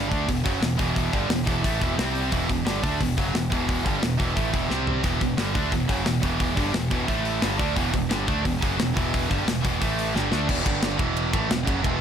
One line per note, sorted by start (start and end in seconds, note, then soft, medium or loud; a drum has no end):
0.00 0.10 G1 medium
0.00 0.10 G2 medium
0.00 0.11 G3 medium
0.10 0.27 D2 medium
0.10 0.27 D3 medium
0.10 0.27 A3 medium
0.10 0.28 D4 medium
0.10 kick loud
0.10 open hi-hat medium
0.27 0.44 E1 medium
0.27 0.41 E2 medium
0.27 0.41 B2 medium
0.27 kick medium
0.27 open hi-hat medium
0.45 0.61 F#1 medium
0.45 0.61 F#2 medium
0.45 0.61 C#3 medium
0.45 0.62 F#3 medium
0.45 kick loud
0.45 open hi-hat medium
0.62 0.78 E1 medium
0.62 0.76 E2 medium
0.62 0.76 B2 medium
0.62 snare medium
0.62 open hi-hat medium
0.77 1.11 E1 medium
0.77 1.11 E2 medium
0.77 1.12 B2 medium
0.77 1.12 E3 medium
0.77 kick loud
0.77 open hi-hat medium
0.96 kick medium
0.96 open hi-hat medium
1.12 1.28 G1 medium
1.12 1.29 G2 medium
1.12 1.29 D3 medium
1.12 1.30 G3 medium
1.12 kick medium
1.12 open hi-hat medium
1.29 1.45 E1 medium
1.29 1.44 E2 medium
1.29 1.44 B2 medium
1.29 snare loud
1.29 open hi-hat medium
1.46 1.63 E1 medium
1.46 1.63 E2 medium
1.46 1.63 B2 medium
1.46 1.62 E3 loud
1.46 kick loud
1.46 open hi-hat medium
1.63 1.80 A1 medium
1.63 1.80 A2 medium
1.63 1.80 E3 loud
1.63 1.81 A3 loud
1.63 kick medium
1.63 open hi-hat medium
1.80 1.97 E1 medium
1.80 1.97 E2 medium
1.80 1.96 B2 medium
1.80 1.96 E3 medium
1.80 kick loud
1.80 open hi-hat medium
1.96 2.30 C2 medium
1.96 2.31 C3 medium
1.96 2.31 G3 medium
1.96 2.31 C4 medium
1.96 snare medium
1.96 open hi-hat medium
2.15 open hi-hat medium
2.32 2.48 E1 medium
2.32 2.47 E2 medium
2.32 2.48 B2 medium
2.32 2.49 E3 loud
2.32 kick medium
2.32 open hi-hat medium
2.48 2.65 E1 medium
2.48 2.62 E2 medium
2.48 2.63 B2 medium
2.48 kick medium
2.48 open hi-hat medium
2.66 2.82 G1 medium
2.66 2.82 G2 medium
2.66 2.81 D3 medium
2.66 2.83 G3 loud
2.66 snare loud
2.66 open hi-hat medium
2.83 3.00 D2 medium
2.83 2.99 D3 medium
2.83 3.00 A3 medium
2.83 3.00 D4 loud
2.83 kick medium
2.83 open hi-hat medium
3.00 3.16 E1 medium
3.00 3.15 E2 medium
3.00 3.15 B2 medium
3.00 kick medium
3.00 open hi-hat medium
3.18 3.33 F#1 loud
3.18 3.34 F#2 medium
3.18 3.34 C#3 medium
3.18 3.35 F#3 loud
3.18 kick loud
3.18 open hi-hat medium
3.34 3.50 E1 medium
3.34 3.48 E2 medium
3.34 3.48 B2 medium
3.34 snare medium
3.34 open hi-hat medium
3.52 3.84 E1 loud
3.52 3.84 E2 medium
3.52 3.85 B2 medium
3.52 3.86 E3 loud
3.52 kick loud
3.52 open hi-hat medium
3.69 kick medium
3.69 open hi-hat medium
3.85 4.01 G1 loud
3.85 4.01 G2 loud
3.85 4.02 D3 medium
3.85 4.02 G3 medium
3.85 kick medium
3.85 open hi-hat medium
4.02 4.18 E1 medium
4.02 4.16 E2 medium
4.02 4.16 B2 medium
4.02 snare loud
4.02 open hi-hat medium
4.19 4.36 E1 medium
4.19 4.35 E2 medium
4.19 4.34 B2 medium
4.19 4.35 E3 medium
4.19 kick loud
4.19 open hi-hat medium
4.34 4.53 A1 medium
4.34 4.52 A2 medium
4.34 4.53 E3 medium
4.34 4.53 A3 loud
4.34 kick medium
4.34 open hi-hat medium
4.53 4.69 E1 medium
4.53 4.70 E2 medium
4.53 4.69 B2 medium
4.53 4.70 E3 loud
4.53 kick loud
4.53 open hi-hat medium
4.70 5.02 C2 medium
4.70 5.03 C3 medium
4.70 5.04 G3 medium
4.70 5.04 C4 loud
4.70 snare medium
4.87 floor tom medium
5.04 5.20 E1 medium
5.04 5.19 E2 loud
5.04 5.19 B2 loud
5.04 5.21 E3 medium
5.04 kick medium
5.04 open hi-hat medium
5.20 5.37 E1 medium
5.20 5.34 E2 medium
5.20 5.34 B2 medium
5.20 kick medium
5.20 open hi-hat medium
5.37 5.54 G1 medium
5.37 5.55 G2 medium
5.37 5.54 D3 medium
5.37 5.55 G3 medium
5.37 snare loud
5.37 open hi-hat medium
5.55 5.71 D2 medium
5.55 5.72 D3 medium
5.55 5.72 A3 medium
5.55 5.72 D4 medium
5.55 kick loud
5.55 open hi-hat medium
5.72 5.88 E1 medium
5.72 5.86 E2 medium
5.72 5.86 B2 medium
5.72 kick medium
5.72 open hi-hat medium
5.88 6.05 F#1 medium
5.88 6.05 F#2 medium
5.88 6.05 C#3 medium
5.88 6.06 F#3 medium
5.88 kick loud
5.88 open hi-hat medium
6.05 6.22 E1 medium
6.05 6.19 E2 medium
6.05 6.20 B2 medium
6.05 snare medium
6.05 open hi-hat medium
6.20 6.55 E1 loud
6.20 6.55 E2 medium
6.20 6.55 B2 medium
6.20 6.56 E3 medium
6.20 kick loud
6.20 open hi-hat medium
6.40 kick loud
6.40 open hi-hat medium
6.56 6.73 G1 medium
6.56 6.72 G2 medium
6.56 6.73 D3 loud
6.56 6.73 G3 medium
6.56 kick loud
6.56 open hi-hat medium
6.73 6.90 E1 medium
6.73 6.87 E2 medium
6.73 6.87 B2 medium
6.73 snare loud
6.73 open hi-hat medium
6.91 7.07 E1 medium
6.91 7.07 E2 medium
6.91 7.07 B2 medium
6.91 7.07 E3 loud
6.91 kick loud
6.91 open hi-hat medium
7.08 7.40 A1 medium
7.08 7.41 A2 medium
7.08 7.42 E3 loud
7.08 7.42 A3 loud
7.08 kick loud
7.08 open hi-hat medium
7.25 open hi-hat medium
7.41 7.58 G1 medium
7.41 7.58 G2 medium
7.41 7.57 D3 medium
7.41 7.58 G3 loud
7.41 snare loud
7.41 open hi-hat medium
7.58 7.75 D2 medium
7.58 7.75 D3 medium
7.58 7.75 A3 loud
7.58 7.76 D4 loud
7.58 kick loud
7.58 open hi-hat soft
7.75 7.92 E1 loud
7.75 7.91 E2 medium
7.75 7.91 B2 loud
7.75 7.93 E3 medium
7.75 kick medium
7.75 open hi-hat medium
7.92 8.09 E1 medium
7.92 8.06 E2 medium
7.92 8.06 B2 medium
7.92 kick medium
7.92 open hi-hat medium
8.09 8.26 G1 medium
8.09 8.26 G2 medium
8.09 8.25 D3 medium
8.09 8.27 G3 medium
8.09 snare loud
8.09 open hi-hat medium
8.26 8.43 D2 medium
8.26 8.43 D3 medium
8.26 8.44 A3 medium
8.26 8.44 D4 medium
8.26 kick loud
8.26 open hi-hat medium
8.44 8.61 E1 medium
8.44 8.58 E2 medium
8.44 8.58 B2 medium
8.44 kick medium
8.44 open hi-hat medium
8.62 8.78 F#1 loud
8.62 8.78 F#2 medium
8.62 8.78 C#3 loud
8.62 8.79 F#3 loud
8.62 kick loud
8.62 open hi-hat medium
8.78 8.95 E1 medium
8.78 8.92 E2 medium
8.78 8.92 B2 medium
8.78 snare loud
8.78 open hi-hat medium
8.97 9.28 E1 loud
8.97 9.29 E2 medium
8.97 9.29 B2 medium
8.97 9.30 E3 medium
8.97 kick loud
8.97 open hi-hat medium
9.14 kick medium
9.14 open hi-hat medium
9.29 9.46 G1 loud
9.29 9.46 G2 medium
9.29 9.46 D3 loud
9.29 9.46 G3 loud
9.29 kick loud
9.29 open hi-hat medium
9.46 9.62 E1 medium
9.46 9.60 E2 medium
9.46 9.60 B2 medium
9.46 snare loud
9.46 open hi-hat medium
9.62 9.80 E1 medium
9.62 9.79 E2 medium
9.62 9.79 B2 medium
9.62 9.79 E3 medium
9.62 kick loud
9.62 open hi-hat medium
9.80 10.13 A1 medium
9.80 10.13 A2 medium
9.80 10.13 E3 medium
9.80 10.14 A3 loud
9.80 kick medium
9.80 open hi-hat medium
9.99 open hi-hat medium
10.15 10.30 G1 medium
10.15 10.31 G2 medium
10.15 10.30 D3 medium
10.15 10.32 G3 medium
10.15 snare medium
10.31 10.48 D2 medium
10.31 10.47 D3 medium
10.31 10.47 A3 medium
10.31 10.48 D4 medium
10.31 snare medium
10.47 10.64 E1 loud
10.47 10.63 E2 loud
10.47 10.64 B2 medium
10.47 10.65 E3 loud
10.47 kick loud
10.47 crash loud
10.63 10.97 G1 medium
10.63 10.96 G2 loud
10.63 10.97 D3 loud
10.63 10.97 G3 loud
10.63 kick loud
10.63 ride medium
10.83 snare loud
10.83 ride loud
10.97 11.31 E1 medium
10.97 11.31 E2 medium
10.97 11.31 B2 medium
10.97 11.32 E3 loud
10.97 kick loud
10.97 ride medium
11.17 ride loud
11.32 11.49 A1 loud
11.32 11.48 A2 medium
11.32 11.49 E3 medium
11.32 11.50 A3 loud
11.32 kick loud
11.32 ride medium
11.49 11.65 E1 medium
11.49 11.63 E2 medium
11.49 11.63 B2 medium
11.49 snare loud
11.49 ride loud
11.65 11.83 F#1 loud
11.65 11.82 F#2 medium
11.65 11.83 C#3 loud
11.65 11.83 F#3 loud
11.65 kick loud
11.65 ride medium
11.83 12.00 E1 loud
11.83 11.99 E2 loud
11.83 12.00 B2 medium
11.83 12.01 E3 loud
11.83 kick medium
11.83 ride medium